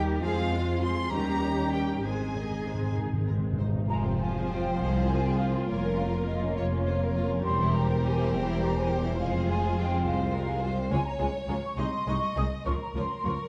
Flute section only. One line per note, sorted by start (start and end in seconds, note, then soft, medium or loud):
3.89 3.95 A#5 medium
4.18 4.48 G#5 medium
4.48 4.79 G5 medium
4.79 5.09 F5 medium
5.08 5.23 G#5 medium
5.24 5.39 G5 medium
5.38 5.45 F5 medium
5.67 5.97 C#5 medium
5.96 6.03 F5 medium
6.27 6.56 D#5 medium
6.56 7.44 C#5 medium
7.43 7.72 C6 medium
7.73 7.87 A#5 medium
7.90 7.96 G5 medium
8.03 8.31 G#5 medium
8.32 8.61 G5 medium
8.61 8.75 A#5 medium
8.77 8.91 G#5 medium
8.90 8.96 G5 medium
9.18 9.47 F5 medium
9.47 9.76 G#5 medium
9.77 10.05 G5 medium
10.05 10.91 F5 medium
10.90 11.05 G#5 medium
11.06 11.12 A#5 medium
11.19 11.26 G#5 medium
11.48 11.54 A#5 medium
11.64 11.78 C#6 medium
11.78 12.07 C6 medium
12.08 12.37 C#6 medium
12.37 12.44 D#6 medium
12.67 12.73 C#6 medium
12.82 12.88 A#5 medium
12.96 13.25 C6 medium
13.25 13.48 C#6 medium